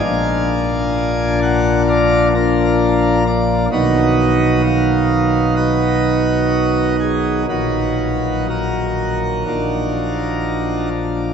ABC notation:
X:1
M:4/4
L:1/8
Q:1/4=64
K:Bbphr
V:1 name="Pipe organ"
[=dfa]3 g [Bdf] [=DFB]2 d | [^F=B^d]2 =f2 [^FBd]3 A | [EGc]2 [EGB]4- [EGB] z |]
V:2 name="Pipe organ" clef=bass
[B,,,B,,F,B,=D]8 | [=B,,,=B,,^D,^F,^D]8 | [B,,,B,,E,G,]4 [B,,,B,,F,B,=D]4 |]